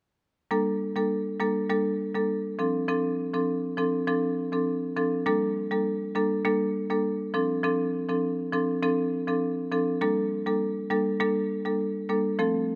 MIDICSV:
0, 0, Header, 1, 2, 480
1, 0, Start_track
1, 0, Key_signature, -2, "minor"
1, 0, Tempo, 594059
1, 412, Time_signature, 4, 2, 24, 8
1, 10305, End_track
2, 0, Start_track
2, 0, Title_t, "Marimba"
2, 0, Program_c, 0, 12
2, 410, Note_on_c, 0, 55, 87
2, 411, Note_on_c, 0, 58, 82
2, 413, Note_on_c, 0, 62, 78
2, 415, Note_on_c, 0, 69, 89
2, 746, Note_off_c, 0, 55, 0
2, 746, Note_off_c, 0, 58, 0
2, 747, Note_off_c, 0, 62, 0
2, 748, Note_off_c, 0, 69, 0
2, 774, Note_on_c, 0, 55, 69
2, 776, Note_on_c, 0, 58, 61
2, 778, Note_on_c, 0, 62, 62
2, 779, Note_on_c, 0, 69, 77
2, 921, Note_off_c, 0, 55, 0
2, 922, Note_off_c, 0, 58, 0
2, 922, Note_off_c, 0, 62, 0
2, 923, Note_off_c, 0, 69, 0
2, 1130, Note_on_c, 0, 55, 78
2, 1132, Note_on_c, 0, 58, 70
2, 1133, Note_on_c, 0, 62, 70
2, 1135, Note_on_c, 0, 69, 81
2, 1283, Note_off_c, 0, 55, 0
2, 1284, Note_off_c, 0, 58, 0
2, 1285, Note_off_c, 0, 62, 0
2, 1286, Note_off_c, 0, 69, 0
2, 1369, Note_on_c, 0, 55, 82
2, 1371, Note_on_c, 0, 58, 78
2, 1373, Note_on_c, 0, 62, 79
2, 1374, Note_on_c, 0, 69, 93
2, 1523, Note_off_c, 0, 55, 0
2, 1524, Note_off_c, 0, 58, 0
2, 1525, Note_off_c, 0, 62, 0
2, 1526, Note_off_c, 0, 69, 0
2, 1734, Note_on_c, 0, 55, 69
2, 1736, Note_on_c, 0, 58, 64
2, 1738, Note_on_c, 0, 62, 62
2, 1739, Note_on_c, 0, 69, 80
2, 1881, Note_off_c, 0, 55, 0
2, 1882, Note_off_c, 0, 58, 0
2, 1882, Note_off_c, 0, 62, 0
2, 1883, Note_off_c, 0, 69, 0
2, 2090, Note_on_c, 0, 53, 74
2, 2092, Note_on_c, 0, 60, 67
2, 2094, Note_on_c, 0, 62, 67
2, 2095, Note_on_c, 0, 69, 78
2, 2243, Note_off_c, 0, 53, 0
2, 2244, Note_off_c, 0, 60, 0
2, 2245, Note_off_c, 0, 62, 0
2, 2246, Note_off_c, 0, 69, 0
2, 2331, Note_on_c, 0, 53, 86
2, 2332, Note_on_c, 0, 60, 80
2, 2334, Note_on_c, 0, 62, 80
2, 2335, Note_on_c, 0, 69, 94
2, 2666, Note_off_c, 0, 53, 0
2, 2667, Note_off_c, 0, 60, 0
2, 2667, Note_off_c, 0, 62, 0
2, 2668, Note_off_c, 0, 69, 0
2, 2695, Note_on_c, 0, 53, 72
2, 2696, Note_on_c, 0, 60, 67
2, 2698, Note_on_c, 0, 62, 66
2, 2700, Note_on_c, 0, 69, 77
2, 2841, Note_off_c, 0, 53, 0
2, 2842, Note_off_c, 0, 60, 0
2, 2843, Note_off_c, 0, 62, 0
2, 2843, Note_off_c, 0, 69, 0
2, 3050, Note_on_c, 0, 53, 75
2, 3052, Note_on_c, 0, 60, 71
2, 3053, Note_on_c, 0, 62, 70
2, 3055, Note_on_c, 0, 69, 84
2, 3203, Note_off_c, 0, 53, 0
2, 3204, Note_off_c, 0, 60, 0
2, 3205, Note_off_c, 0, 62, 0
2, 3206, Note_off_c, 0, 69, 0
2, 3290, Note_on_c, 0, 53, 87
2, 3291, Note_on_c, 0, 60, 81
2, 3293, Note_on_c, 0, 62, 81
2, 3295, Note_on_c, 0, 69, 94
2, 3443, Note_off_c, 0, 53, 0
2, 3444, Note_off_c, 0, 60, 0
2, 3445, Note_off_c, 0, 62, 0
2, 3446, Note_off_c, 0, 69, 0
2, 3655, Note_on_c, 0, 53, 66
2, 3657, Note_on_c, 0, 60, 66
2, 3658, Note_on_c, 0, 62, 63
2, 3660, Note_on_c, 0, 69, 77
2, 3801, Note_off_c, 0, 53, 0
2, 3802, Note_off_c, 0, 60, 0
2, 3803, Note_off_c, 0, 62, 0
2, 3803, Note_off_c, 0, 69, 0
2, 4010, Note_on_c, 0, 53, 70
2, 4011, Note_on_c, 0, 60, 65
2, 4013, Note_on_c, 0, 62, 65
2, 4015, Note_on_c, 0, 69, 79
2, 4163, Note_off_c, 0, 53, 0
2, 4164, Note_off_c, 0, 60, 0
2, 4165, Note_off_c, 0, 62, 0
2, 4166, Note_off_c, 0, 69, 0
2, 4250, Note_on_c, 0, 55, 89
2, 4251, Note_on_c, 0, 58, 78
2, 4253, Note_on_c, 0, 62, 78
2, 4255, Note_on_c, 0, 69, 97
2, 4586, Note_off_c, 0, 55, 0
2, 4586, Note_off_c, 0, 58, 0
2, 4587, Note_off_c, 0, 62, 0
2, 4588, Note_off_c, 0, 69, 0
2, 4615, Note_on_c, 0, 55, 73
2, 4616, Note_on_c, 0, 58, 63
2, 4618, Note_on_c, 0, 62, 62
2, 4620, Note_on_c, 0, 69, 76
2, 4761, Note_off_c, 0, 55, 0
2, 4762, Note_off_c, 0, 58, 0
2, 4763, Note_off_c, 0, 62, 0
2, 4763, Note_off_c, 0, 69, 0
2, 4970, Note_on_c, 0, 55, 76
2, 4972, Note_on_c, 0, 58, 69
2, 4973, Note_on_c, 0, 62, 73
2, 4975, Note_on_c, 0, 69, 85
2, 5123, Note_off_c, 0, 55, 0
2, 5124, Note_off_c, 0, 58, 0
2, 5125, Note_off_c, 0, 62, 0
2, 5126, Note_off_c, 0, 69, 0
2, 5209, Note_on_c, 0, 55, 88
2, 5211, Note_on_c, 0, 58, 81
2, 5212, Note_on_c, 0, 62, 80
2, 5214, Note_on_c, 0, 69, 97
2, 5363, Note_off_c, 0, 55, 0
2, 5364, Note_off_c, 0, 58, 0
2, 5364, Note_off_c, 0, 62, 0
2, 5365, Note_off_c, 0, 69, 0
2, 5574, Note_on_c, 0, 55, 71
2, 5576, Note_on_c, 0, 58, 66
2, 5578, Note_on_c, 0, 62, 66
2, 5579, Note_on_c, 0, 69, 77
2, 5721, Note_off_c, 0, 55, 0
2, 5722, Note_off_c, 0, 58, 0
2, 5722, Note_off_c, 0, 62, 0
2, 5723, Note_off_c, 0, 69, 0
2, 5929, Note_on_c, 0, 53, 75
2, 5931, Note_on_c, 0, 60, 68
2, 5933, Note_on_c, 0, 62, 67
2, 5934, Note_on_c, 0, 69, 78
2, 6083, Note_off_c, 0, 53, 0
2, 6084, Note_off_c, 0, 60, 0
2, 6085, Note_off_c, 0, 62, 0
2, 6085, Note_off_c, 0, 69, 0
2, 6170, Note_on_c, 0, 53, 88
2, 6172, Note_on_c, 0, 60, 81
2, 6173, Note_on_c, 0, 62, 79
2, 6175, Note_on_c, 0, 69, 95
2, 6506, Note_off_c, 0, 53, 0
2, 6507, Note_off_c, 0, 60, 0
2, 6507, Note_off_c, 0, 62, 0
2, 6508, Note_off_c, 0, 69, 0
2, 6535, Note_on_c, 0, 53, 71
2, 6537, Note_on_c, 0, 60, 62
2, 6538, Note_on_c, 0, 62, 65
2, 6540, Note_on_c, 0, 69, 76
2, 6681, Note_off_c, 0, 53, 0
2, 6682, Note_off_c, 0, 60, 0
2, 6683, Note_off_c, 0, 62, 0
2, 6683, Note_off_c, 0, 69, 0
2, 6890, Note_on_c, 0, 53, 80
2, 6891, Note_on_c, 0, 60, 71
2, 6893, Note_on_c, 0, 62, 71
2, 6895, Note_on_c, 0, 69, 82
2, 7043, Note_off_c, 0, 53, 0
2, 7044, Note_off_c, 0, 60, 0
2, 7045, Note_off_c, 0, 62, 0
2, 7046, Note_off_c, 0, 69, 0
2, 7130, Note_on_c, 0, 53, 87
2, 7131, Note_on_c, 0, 60, 84
2, 7133, Note_on_c, 0, 62, 82
2, 7135, Note_on_c, 0, 69, 98
2, 7283, Note_off_c, 0, 53, 0
2, 7284, Note_off_c, 0, 60, 0
2, 7285, Note_off_c, 0, 62, 0
2, 7286, Note_off_c, 0, 69, 0
2, 7495, Note_on_c, 0, 53, 69
2, 7496, Note_on_c, 0, 60, 63
2, 7498, Note_on_c, 0, 62, 65
2, 7500, Note_on_c, 0, 69, 79
2, 7641, Note_off_c, 0, 53, 0
2, 7642, Note_off_c, 0, 60, 0
2, 7643, Note_off_c, 0, 62, 0
2, 7644, Note_off_c, 0, 69, 0
2, 7850, Note_on_c, 0, 53, 74
2, 7851, Note_on_c, 0, 60, 67
2, 7853, Note_on_c, 0, 62, 68
2, 7855, Note_on_c, 0, 69, 82
2, 8003, Note_off_c, 0, 53, 0
2, 8004, Note_off_c, 0, 60, 0
2, 8005, Note_off_c, 0, 62, 0
2, 8006, Note_off_c, 0, 69, 0
2, 8090, Note_on_c, 0, 55, 89
2, 8091, Note_on_c, 0, 58, 79
2, 8093, Note_on_c, 0, 62, 82
2, 8094, Note_on_c, 0, 69, 100
2, 8426, Note_off_c, 0, 55, 0
2, 8426, Note_off_c, 0, 58, 0
2, 8427, Note_off_c, 0, 62, 0
2, 8428, Note_off_c, 0, 69, 0
2, 8454, Note_on_c, 0, 55, 71
2, 8455, Note_on_c, 0, 58, 67
2, 8457, Note_on_c, 0, 62, 64
2, 8459, Note_on_c, 0, 69, 82
2, 8600, Note_off_c, 0, 55, 0
2, 8601, Note_off_c, 0, 58, 0
2, 8602, Note_off_c, 0, 62, 0
2, 8603, Note_off_c, 0, 69, 0
2, 8809, Note_on_c, 0, 55, 79
2, 8811, Note_on_c, 0, 58, 73
2, 8813, Note_on_c, 0, 62, 69
2, 8814, Note_on_c, 0, 69, 85
2, 8963, Note_off_c, 0, 55, 0
2, 8964, Note_off_c, 0, 58, 0
2, 8965, Note_off_c, 0, 62, 0
2, 8966, Note_off_c, 0, 69, 0
2, 9049, Note_on_c, 0, 55, 92
2, 9051, Note_on_c, 0, 58, 83
2, 9053, Note_on_c, 0, 62, 79
2, 9054, Note_on_c, 0, 69, 100
2, 9203, Note_off_c, 0, 55, 0
2, 9204, Note_off_c, 0, 58, 0
2, 9205, Note_off_c, 0, 62, 0
2, 9205, Note_off_c, 0, 69, 0
2, 9414, Note_on_c, 0, 55, 69
2, 9416, Note_on_c, 0, 58, 63
2, 9418, Note_on_c, 0, 62, 63
2, 9419, Note_on_c, 0, 69, 78
2, 9561, Note_off_c, 0, 55, 0
2, 9561, Note_off_c, 0, 58, 0
2, 9562, Note_off_c, 0, 62, 0
2, 9563, Note_off_c, 0, 69, 0
2, 9769, Note_on_c, 0, 55, 76
2, 9771, Note_on_c, 0, 58, 68
2, 9772, Note_on_c, 0, 62, 69
2, 9774, Note_on_c, 0, 69, 83
2, 9923, Note_off_c, 0, 55, 0
2, 9924, Note_off_c, 0, 58, 0
2, 9924, Note_off_c, 0, 62, 0
2, 9925, Note_off_c, 0, 69, 0
2, 10009, Note_on_c, 0, 53, 88
2, 10011, Note_on_c, 0, 57, 79
2, 10012, Note_on_c, 0, 60, 78
2, 10014, Note_on_c, 0, 69, 100
2, 10305, Note_off_c, 0, 53, 0
2, 10305, Note_off_c, 0, 57, 0
2, 10305, Note_off_c, 0, 60, 0
2, 10305, Note_off_c, 0, 69, 0
2, 10305, End_track
0, 0, End_of_file